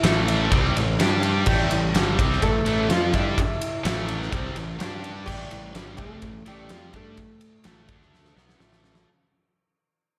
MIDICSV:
0, 0, Header, 1, 5, 480
1, 0, Start_track
1, 0, Key_signature, 0, "minor"
1, 0, Tempo, 475059
1, 1484, Time_signature, 4, 2, 24, 8
1, 10295, End_track
2, 0, Start_track
2, 0, Title_t, "Oud"
2, 0, Program_c, 0, 24
2, 0, Note_on_c, 0, 64, 78
2, 0, Note_on_c, 0, 76, 67
2, 723, Note_off_c, 0, 76, 0
2, 738, Note_off_c, 0, 64, 0
2, 1480, Note_on_c, 0, 67, 106
2, 1490, Note_on_c, 0, 55, 66
2, 2404, Note_off_c, 0, 67, 0
2, 2405, Note_off_c, 0, 55, 0
2, 2453, Note_on_c, 0, 69, 113
2, 2461, Note_on_c, 0, 57, 85
2, 2901, Note_off_c, 0, 57, 0
2, 2934, Note_on_c, 0, 65, 87
2, 2938, Note_on_c, 0, 77, 71
2, 2944, Note_off_c, 0, 69, 0
2, 3155, Note_off_c, 0, 77, 0
2, 3178, Note_off_c, 0, 65, 0
2, 3182, Note_on_c, 0, 64, 88
2, 3185, Note_on_c, 0, 76, 56
2, 5054, Note_off_c, 0, 64, 0
2, 5054, Note_off_c, 0, 76, 0
2, 5314, Note_on_c, 0, 67, 112
2, 5321, Note_on_c, 0, 55, 82
2, 5999, Note_off_c, 0, 67, 0
2, 6003, Note_off_c, 0, 55, 0
2, 6032, Note_on_c, 0, 69, 113
2, 6045, Note_on_c, 0, 57, 83
2, 6492, Note_off_c, 0, 57, 0
2, 6533, Note_off_c, 0, 69, 0
2, 6540, Note_on_c, 0, 55, 83
2, 6546, Note_on_c, 0, 67, 94
2, 6980, Note_off_c, 0, 55, 0
2, 7028, Note_off_c, 0, 67, 0
2, 7032, Note_on_c, 0, 57, 90
2, 7034, Note_on_c, 0, 69, 86
2, 8416, Note_off_c, 0, 69, 0
2, 8417, Note_off_c, 0, 57, 0
2, 10295, End_track
3, 0, Start_track
3, 0, Title_t, "Distorted electric guitar"
3, 0, Program_c, 1, 30
3, 36, Note_on_c, 1, 45, 89
3, 42, Note_on_c, 1, 52, 95
3, 46, Note_on_c, 1, 57, 99
3, 511, Note_off_c, 1, 45, 0
3, 515, Note_off_c, 1, 52, 0
3, 515, Note_on_c, 1, 48, 90
3, 518, Note_off_c, 1, 57, 0
3, 526, Note_on_c, 1, 55, 101
3, 533, Note_on_c, 1, 60, 97
3, 752, Note_off_c, 1, 48, 0
3, 756, Note_off_c, 1, 55, 0
3, 761, Note_off_c, 1, 60, 0
3, 761, Note_on_c, 1, 45, 58
3, 761, Note_on_c, 1, 52, 76
3, 954, Note_off_c, 1, 45, 0
3, 954, Note_off_c, 1, 52, 0
3, 1003, Note_on_c, 1, 55, 92
3, 1005, Note_on_c, 1, 62, 107
3, 1017, Note_on_c, 1, 67, 111
3, 1476, Note_off_c, 1, 55, 0
3, 1478, Note_off_c, 1, 62, 0
3, 1484, Note_off_c, 1, 67, 0
3, 1487, Note_on_c, 1, 45, 88
3, 1501, Note_on_c, 1, 52, 90
3, 1509, Note_on_c, 1, 57, 101
3, 1709, Note_off_c, 1, 45, 0
3, 1715, Note_off_c, 1, 52, 0
3, 1721, Note_on_c, 1, 45, 59
3, 1727, Note_on_c, 1, 52, 69
3, 1730, Note_off_c, 1, 57, 0
3, 1915, Note_off_c, 1, 45, 0
3, 1918, Note_off_c, 1, 52, 0
3, 1967, Note_on_c, 1, 43, 106
3, 1973, Note_on_c, 1, 50, 114
3, 1981, Note_on_c, 1, 55, 116
3, 2192, Note_off_c, 1, 50, 0
3, 2194, Note_off_c, 1, 55, 0
3, 2196, Note_on_c, 1, 48, 87
3, 2199, Note_off_c, 1, 43, 0
3, 2207, Note_on_c, 1, 55, 103
3, 2214, Note_on_c, 1, 60, 105
3, 2433, Note_off_c, 1, 48, 0
3, 2438, Note_on_c, 1, 45, 62
3, 2439, Note_off_c, 1, 55, 0
3, 2443, Note_off_c, 1, 60, 0
3, 2444, Note_on_c, 1, 52, 72
3, 2634, Note_off_c, 1, 45, 0
3, 2637, Note_off_c, 1, 52, 0
3, 2679, Note_on_c, 1, 45, 99
3, 2687, Note_on_c, 1, 52, 105
3, 2695, Note_on_c, 1, 57, 97
3, 2915, Note_off_c, 1, 45, 0
3, 2919, Note_off_c, 1, 52, 0
3, 2923, Note_off_c, 1, 57, 0
3, 2931, Note_on_c, 1, 53, 93
3, 2944, Note_on_c, 1, 60, 115
3, 2945, Note_on_c, 1, 65, 119
3, 3157, Note_off_c, 1, 60, 0
3, 3161, Note_off_c, 1, 53, 0
3, 3161, Note_on_c, 1, 55, 88
3, 3162, Note_off_c, 1, 65, 0
3, 3166, Note_on_c, 1, 62, 108
3, 3179, Note_on_c, 1, 67, 101
3, 3396, Note_off_c, 1, 55, 0
3, 3399, Note_off_c, 1, 62, 0
3, 3406, Note_off_c, 1, 67, 0
3, 3876, Note_on_c, 1, 45, 96
3, 3882, Note_on_c, 1, 52, 102
3, 3890, Note_on_c, 1, 57, 104
3, 4354, Note_off_c, 1, 45, 0
3, 4357, Note_off_c, 1, 52, 0
3, 4361, Note_off_c, 1, 57, 0
3, 4362, Note_on_c, 1, 48, 87
3, 4369, Note_on_c, 1, 55, 107
3, 4375, Note_on_c, 1, 60, 103
3, 4597, Note_off_c, 1, 48, 0
3, 4601, Note_off_c, 1, 55, 0
3, 4604, Note_off_c, 1, 60, 0
3, 4604, Note_on_c, 1, 45, 58
3, 4609, Note_on_c, 1, 52, 66
3, 4797, Note_off_c, 1, 45, 0
3, 4800, Note_off_c, 1, 52, 0
3, 4837, Note_on_c, 1, 55, 90
3, 4844, Note_on_c, 1, 62, 105
3, 4848, Note_on_c, 1, 67, 105
3, 5315, Note_off_c, 1, 55, 0
3, 5318, Note_off_c, 1, 62, 0
3, 5320, Note_off_c, 1, 67, 0
3, 5321, Note_on_c, 1, 45, 96
3, 5330, Note_on_c, 1, 52, 96
3, 5334, Note_on_c, 1, 57, 108
3, 5556, Note_off_c, 1, 45, 0
3, 5561, Note_off_c, 1, 52, 0
3, 5563, Note_off_c, 1, 57, 0
3, 5576, Note_on_c, 1, 45, 64
3, 5579, Note_on_c, 1, 52, 72
3, 5763, Note_off_c, 1, 45, 0
3, 5764, Note_off_c, 1, 52, 0
3, 5808, Note_on_c, 1, 43, 104
3, 5814, Note_on_c, 1, 50, 109
3, 5819, Note_on_c, 1, 55, 103
3, 6033, Note_off_c, 1, 55, 0
3, 6035, Note_off_c, 1, 50, 0
3, 6039, Note_on_c, 1, 48, 92
3, 6040, Note_off_c, 1, 43, 0
3, 6045, Note_on_c, 1, 55, 91
3, 6058, Note_on_c, 1, 60, 110
3, 6275, Note_off_c, 1, 48, 0
3, 6278, Note_off_c, 1, 55, 0
3, 6285, Note_off_c, 1, 60, 0
3, 6288, Note_on_c, 1, 45, 66
3, 6292, Note_on_c, 1, 52, 75
3, 6479, Note_off_c, 1, 45, 0
3, 6481, Note_off_c, 1, 52, 0
3, 6523, Note_on_c, 1, 45, 92
3, 6535, Note_on_c, 1, 52, 91
3, 6540, Note_on_c, 1, 57, 101
3, 6757, Note_off_c, 1, 45, 0
3, 6763, Note_off_c, 1, 52, 0
3, 6766, Note_off_c, 1, 57, 0
3, 6766, Note_on_c, 1, 53, 98
3, 6770, Note_on_c, 1, 60, 109
3, 6776, Note_on_c, 1, 65, 119
3, 6998, Note_off_c, 1, 53, 0
3, 6998, Note_off_c, 1, 60, 0
3, 7002, Note_on_c, 1, 55, 102
3, 7003, Note_off_c, 1, 65, 0
3, 7009, Note_on_c, 1, 62, 105
3, 7017, Note_on_c, 1, 67, 96
3, 7236, Note_off_c, 1, 55, 0
3, 7240, Note_off_c, 1, 62, 0
3, 7243, Note_off_c, 1, 67, 0
3, 7727, Note_on_c, 1, 45, 99
3, 7738, Note_on_c, 1, 52, 114
3, 7746, Note_on_c, 1, 57, 104
3, 7958, Note_off_c, 1, 45, 0
3, 7964, Note_off_c, 1, 52, 0
3, 7968, Note_off_c, 1, 57, 0
3, 7972, Note_on_c, 1, 50, 84
3, 7982, Note_on_c, 1, 57, 102
3, 7988, Note_on_c, 1, 62, 110
3, 8440, Note_off_c, 1, 50, 0
3, 8445, Note_on_c, 1, 47, 85
3, 8446, Note_off_c, 1, 57, 0
3, 8448, Note_off_c, 1, 62, 0
3, 8455, Note_on_c, 1, 54, 94
3, 8464, Note_on_c, 1, 59, 89
3, 8668, Note_off_c, 1, 47, 0
3, 8672, Note_on_c, 1, 45, 100
3, 8675, Note_off_c, 1, 54, 0
3, 8679, Note_off_c, 1, 59, 0
3, 8679, Note_on_c, 1, 52, 98
3, 8683, Note_on_c, 1, 57, 108
3, 9150, Note_off_c, 1, 45, 0
3, 9154, Note_off_c, 1, 52, 0
3, 9156, Note_off_c, 1, 57, 0
3, 10295, End_track
4, 0, Start_track
4, 0, Title_t, "Fingered electric bass"
4, 0, Program_c, 2, 33
4, 34, Note_on_c, 2, 33, 93
4, 484, Note_off_c, 2, 33, 0
4, 525, Note_on_c, 2, 36, 98
4, 747, Note_off_c, 2, 36, 0
4, 761, Note_on_c, 2, 33, 82
4, 986, Note_off_c, 2, 33, 0
4, 1000, Note_on_c, 2, 43, 100
4, 1449, Note_off_c, 2, 43, 0
4, 1484, Note_on_c, 2, 33, 88
4, 1707, Note_off_c, 2, 33, 0
4, 1724, Note_on_c, 2, 33, 79
4, 1948, Note_off_c, 2, 33, 0
4, 1965, Note_on_c, 2, 31, 97
4, 2188, Note_off_c, 2, 31, 0
4, 2213, Note_on_c, 2, 36, 95
4, 2433, Note_off_c, 2, 36, 0
4, 2451, Note_on_c, 2, 33, 81
4, 2672, Note_off_c, 2, 33, 0
4, 2679, Note_on_c, 2, 33, 96
4, 2906, Note_off_c, 2, 33, 0
4, 2919, Note_on_c, 2, 41, 106
4, 3146, Note_off_c, 2, 41, 0
4, 3171, Note_on_c, 2, 43, 100
4, 3392, Note_off_c, 2, 43, 0
4, 3890, Note_on_c, 2, 33, 112
4, 4335, Note_off_c, 2, 33, 0
4, 4368, Note_on_c, 2, 36, 88
4, 4591, Note_off_c, 2, 36, 0
4, 4598, Note_on_c, 2, 33, 82
4, 4825, Note_off_c, 2, 33, 0
4, 4839, Note_on_c, 2, 43, 91
4, 5289, Note_off_c, 2, 43, 0
4, 5332, Note_on_c, 2, 33, 85
4, 5553, Note_off_c, 2, 33, 0
4, 5570, Note_on_c, 2, 33, 82
4, 5791, Note_off_c, 2, 33, 0
4, 5811, Note_on_c, 2, 31, 111
4, 6032, Note_off_c, 2, 31, 0
4, 6045, Note_on_c, 2, 36, 110
4, 6269, Note_off_c, 2, 36, 0
4, 6289, Note_on_c, 2, 33, 81
4, 6511, Note_off_c, 2, 33, 0
4, 6535, Note_on_c, 2, 33, 104
4, 6753, Note_off_c, 2, 33, 0
4, 6783, Note_on_c, 2, 41, 100
4, 6998, Note_off_c, 2, 41, 0
4, 7014, Note_on_c, 2, 43, 109
4, 7233, Note_off_c, 2, 43, 0
4, 7739, Note_on_c, 2, 33, 102
4, 7955, Note_off_c, 2, 33, 0
4, 7971, Note_on_c, 2, 38, 101
4, 8414, Note_off_c, 2, 38, 0
4, 8448, Note_on_c, 2, 35, 106
4, 8669, Note_off_c, 2, 35, 0
4, 8688, Note_on_c, 2, 33, 94
4, 9132, Note_off_c, 2, 33, 0
4, 10295, End_track
5, 0, Start_track
5, 0, Title_t, "Drums"
5, 36, Note_on_c, 9, 51, 107
5, 48, Note_on_c, 9, 38, 127
5, 137, Note_off_c, 9, 51, 0
5, 149, Note_off_c, 9, 38, 0
5, 285, Note_on_c, 9, 51, 78
5, 386, Note_off_c, 9, 51, 0
5, 523, Note_on_c, 9, 36, 105
5, 523, Note_on_c, 9, 51, 91
5, 624, Note_off_c, 9, 36, 0
5, 624, Note_off_c, 9, 51, 0
5, 774, Note_on_c, 9, 51, 73
5, 875, Note_off_c, 9, 51, 0
5, 1007, Note_on_c, 9, 51, 110
5, 1019, Note_on_c, 9, 38, 127
5, 1108, Note_off_c, 9, 51, 0
5, 1121, Note_off_c, 9, 38, 0
5, 1241, Note_on_c, 9, 51, 73
5, 1342, Note_off_c, 9, 51, 0
5, 1475, Note_on_c, 9, 49, 99
5, 1485, Note_on_c, 9, 36, 120
5, 1576, Note_off_c, 9, 49, 0
5, 1586, Note_off_c, 9, 36, 0
5, 1726, Note_on_c, 9, 51, 85
5, 1827, Note_off_c, 9, 51, 0
5, 1966, Note_on_c, 9, 51, 105
5, 1978, Note_on_c, 9, 38, 120
5, 2067, Note_off_c, 9, 51, 0
5, 2079, Note_off_c, 9, 38, 0
5, 2211, Note_on_c, 9, 36, 118
5, 2217, Note_on_c, 9, 51, 83
5, 2312, Note_off_c, 9, 36, 0
5, 2318, Note_off_c, 9, 51, 0
5, 2345, Note_on_c, 9, 38, 35
5, 2446, Note_off_c, 9, 38, 0
5, 2447, Note_on_c, 9, 51, 101
5, 2451, Note_on_c, 9, 36, 94
5, 2548, Note_off_c, 9, 51, 0
5, 2552, Note_off_c, 9, 36, 0
5, 2688, Note_on_c, 9, 51, 70
5, 2789, Note_off_c, 9, 51, 0
5, 2928, Note_on_c, 9, 51, 105
5, 2940, Note_on_c, 9, 38, 114
5, 3029, Note_off_c, 9, 51, 0
5, 3041, Note_off_c, 9, 38, 0
5, 3167, Note_on_c, 9, 51, 85
5, 3171, Note_on_c, 9, 36, 107
5, 3268, Note_off_c, 9, 51, 0
5, 3272, Note_off_c, 9, 36, 0
5, 3414, Note_on_c, 9, 36, 107
5, 3419, Note_on_c, 9, 51, 105
5, 3515, Note_off_c, 9, 36, 0
5, 3520, Note_off_c, 9, 51, 0
5, 3653, Note_on_c, 9, 51, 90
5, 3754, Note_off_c, 9, 51, 0
5, 3891, Note_on_c, 9, 51, 112
5, 3903, Note_on_c, 9, 38, 123
5, 3992, Note_off_c, 9, 51, 0
5, 4004, Note_off_c, 9, 38, 0
5, 4127, Note_on_c, 9, 51, 76
5, 4228, Note_off_c, 9, 51, 0
5, 4268, Note_on_c, 9, 38, 33
5, 4369, Note_off_c, 9, 38, 0
5, 4370, Note_on_c, 9, 36, 104
5, 4373, Note_on_c, 9, 51, 99
5, 4471, Note_off_c, 9, 36, 0
5, 4474, Note_off_c, 9, 51, 0
5, 4606, Note_on_c, 9, 51, 68
5, 4707, Note_off_c, 9, 51, 0
5, 4850, Note_on_c, 9, 51, 103
5, 4862, Note_on_c, 9, 38, 127
5, 4951, Note_off_c, 9, 51, 0
5, 4963, Note_off_c, 9, 38, 0
5, 5091, Note_on_c, 9, 51, 72
5, 5192, Note_off_c, 9, 51, 0
5, 5330, Note_on_c, 9, 36, 108
5, 5334, Note_on_c, 9, 57, 110
5, 5431, Note_off_c, 9, 36, 0
5, 5435, Note_off_c, 9, 57, 0
5, 5567, Note_on_c, 9, 51, 80
5, 5668, Note_off_c, 9, 51, 0
5, 5808, Note_on_c, 9, 51, 104
5, 5820, Note_on_c, 9, 38, 127
5, 5909, Note_off_c, 9, 51, 0
5, 5921, Note_off_c, 9, 38, 0
5, 6042, Note_on_c, 9, 51, 82
5, 6047, Note_on_c, 9, 36, 121
5, 6143, Note_off_c, 9, 51, 0
5, 6148, Note_off_c, 9, 36, 0
5, 6283, Note_on_c, 9, 51, 107
5, 6289, Note_on_c, 9, 36, 101
5, 6384, Note_off_c, 9, 51, 0
5, 6390, Note_off_c, 9, 36, 0
5, 6527, Note_on_c, 9, 51, 81
5, 6628, Note_off_c, 9, 51, 0
5, 6761, Note_on_c, 9, 51, 113
5, 6774, Note_on_c, 9, 38, 123
5, 6862, Note_off_c, 9, 51, 0
5, 6875, Note_off_c, 9, 38, 0
5, 7006, Note_on_c, 9, 51, 81
5, 7010, Note_on_c, 9, 36, 103
5, 7107, Note_off_c, 9, 51, 0
5, 7111, Note_off_c, 9, 36, 0
5, 7247, Note_on_c, 9, 51, 107
5, 7252, Note_on_c, 9, 36, 99
5, 7348, Note_off_c, 9, 51, 0
5, 7353, Note_off_c, 9, 36, 0
5, 7485, Note_on_c, 9, 51, 88
5, 7586, Note_off_c, 9, 51, 0
5, 7718, Note_on_c, 9, 51, 119
5, 7730, Note_on_c, 9, 38, 124
5, 7819, Note_off_c, 9, 51, 0
5, 7832, Note_off_c, 9, 38, 0
5, 7968, Note_on_c, 9, 51, 91
5, 7970, Note_on_c, 9, 36, 119
5, 8069, Note_off_c, 9, 51, 0
5, 8071, Note_off_c, 9, 36, 0
5, 8103, Note_on_c, 9, 38, 30
5, 8204, Note_off_c, 9, 38, 0
5, 8226, Note_on_c, 9, 38, 68
5, 8327, Note_off_c, 9, 38, 0
5, 8335, Note_on_c, 9, 38, 57
5, 8436, Note_off_c, 9, 38, 0
5, 8460, Note_on_c, 9, 38, 71
5, 8561, Note_off_c, 9, 38, 0
5, 8580, Note_on_c, 9, 38, 73
5, 8681, Note_off_c, 9, 38, 0
5, 8693, Note_on_c, 9, 38, 90
5, 8794, Note_off_c, 9, 38, 0
5, 8814, Note_on_c, 9, 38, 83
5, 8915, Note_off_c, 9, 38, 0
5, 8933, Note_on_c, 9, 38, 92
5, 9034, Note_off_c, 9, 38, 0
5, 9045, Note_on_c, 9, 38, 102
5, 9146, Note_off_c, 9, 38, 0
5, 10295, End_track
0, 0, End_of_file